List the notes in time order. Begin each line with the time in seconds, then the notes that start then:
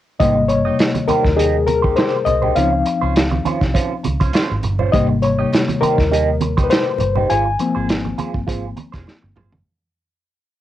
0.20 G#1 C3 G3 A#3 D#4 G4 C5 D#5, kick, closed hi-hat, muted conga
0.36 muted clean electric guitar stroke
0.49 C#5, muted clean electric guitar stroke, closed hi-hat, muted conga
0.65 D#4 G4 D#5
0.79 muted clean electric guitar stroke, snare, closed hi-hat, muted conga
0.95 muted clean electric guitar stroke, closed hi-hat, high conga
1.08 D#4 G4 A#4 C5, muted fingered electric bass stroke, closed hi-hat, muted conga, high conga
1.25 D#2, kick, snare
1.37 D#4 G4 G#4 D#5, closed hi-hat, muted conga
1.66 A#4, muted clean electric guitar stroke, closed hi-hat, muted conga, high conga
1.82 D#4 G4 C5, kick
1.96 D#4 G4 C5, snare, closed hi-hat
2.25 C2 D#5, muted clean electric guitar stroke, closed hi-hat, low conga
2.42 D#4 G4 C5, low conga
2.55 C#2 F3 C4 C#4 D#4 F4 C5 F5, closed hi-hat, muted conga
2.72 muted clean electric guitar stroke
2.85 muted clean electric guitar stroke, closed hi-hat
3.01 C#2 C#4 F4 C5
3.15 muted clean electric guitar stroke, snare, closed hi-hat, muted conga
3.31 muted clean electric guitar stroke, high conga
3.45 C#4 F4 C5, muted fingered electric bass stroke, closed hi-hat, muted conga, high conga
3.61 C2, muted clean electric guitar stroke, kick, snare
3.74 C#4 F4 C5, kick, closed hi-hat
4.03 C#2, muted clean electric guitar stroke, closed hi-hat, muted conga, high conga
4.20 C#4 F4 C5, kick, closed hi-hat
4.33 C#4 F4 C5, snare, closed hi-hat, muted conga
4.51 G#1
4.63 G1, muted clean electric guitar stroke, closed hi-hat, muted conga, low conga
4.79 C#4 F4 C5, low conga
4.92 G#1 C3 G3 A#3 D#4 G4 C5 D#5, kick, closed hi-hat, muted conga
5.09 muted clean electric guitar stroke
5.22 C#5, muted clean electric guitar stroke, closed hi-hat, muted conga
5.39 D#4 G4 D#5
5.52 muted clean electric guitar stroke, snare, closed hi-hat, muted conga
5.68 muted clean electric guitar stroke, closed hi-hat, high conga
5.81 D#4 G4 A#4 C5, muted fingered electric bass stroke, closed hi-hat, high conga
5.98 D#2, muted clean electric guitar stroke, kick, snare
6.12 D#4 G4 D#5, closed hi-hat, muted conga
6.41 muted clean electric guitar stroke, closed hi-hat, muted conga, high conga
6.57 D#4 G4 C5, kick, closed hi-hat
6.64 B4
6.70 D#4 G4 C5, snare, closed hi-hat, muted conga
6.99 G1, muted clean electric guitar stroke, closed hi-hat, muted conga, low conga
7.16 D#4 G4 C5, low conga
7.29 G#1 F4 G#4 C5 G#5, closed hi-hat, muted conga
7.46 muted clean electric guitar stroke
7.59 F3 A#3 C4, muted clean electric guitar stroke, closed hi-hat
7.75 G#1 F4 G#4 C5
7.89 muted clean electric guitar stroke, snare, closed hi-hat, muted conga
8.05 muted clean electric guitar stroke, high conga
8.18 F4 G#4 C5, muted fingered electric bass stroke, closed hi-hat, muted conga, high conga
8.34 G1, muted clean electric guitar stroke, kick
8.47 G#1 F4 G#4 C5, kick, closed hi-hat, muted conga
8.77 muted clean electric guitar stroke, closed hi-hat, high conga
8.92 F1 F4 G#4 C5, kick, snare, closed hi-hat
9.06 muted clean electric guitar stroke, snare, muted conga
9.23 G1, muted clean electric guitar stroke
9.36 G1 F4 G#4 C5, mid tom, low conga
9.52 muted clean electric guitar stroke, floor tom, low conga